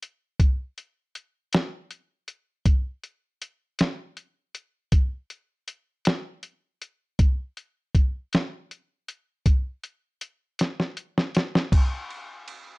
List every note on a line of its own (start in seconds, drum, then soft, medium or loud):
0.03 closed hi-hat soft
0.40 kick medium
0.40 closed hi-hat medium
0.78 closed hi-hat soft
1.15 closed hi-hat soft
1.53 snare loud
1.53 closed hi-hat medium
1.91 closed hi-hat medium
2.28 closed hi-hat medium
2.66 kick loud
2.66 closed hi-hat medium
3.04 closed hi-hat medium
3.42 closed hi-hat medium
3.79 snare medium
3.79 closed hi-hat medium
4.17 closed hi-hat medium
4.55 closed hi-hat medium
4.92 kick medium
4.92 closed hi-hat medium
5.30 closed hi-hat medium
5.68 closed hi-hat medium
6.05 snare loud
6.05 closed hi-hat medium
6.43 closed hi-hat medium
6.82 closed hi-hat medium
7.19 kick medium
7.19 closed hi-hat medium
7.57 closed hi-hat soft
7.95 kick medium
7.95 closed hi-hat medium
8.33 snare medium
8.33 closed hi-hat medium
8.71 closed hi-hat medium
9.08 closed hi-hat medium
9.46 kick medium
9.46 closed hi-hat medium
9.84 closed hi-hat medium
10.21 closed hi-hat medium
10.59 snare medium
10.59 closed hi-hat medium
10.80 snare soft
10.97 closed hi-hat medium
11.18 snare medium
11.35 snare medium
11.35 closed hi-hat medium
11.55 snare medium
11.72 kick loud
11.72 crash medium
11.72 ride medium
12.10 ride medium
12.48 ride medium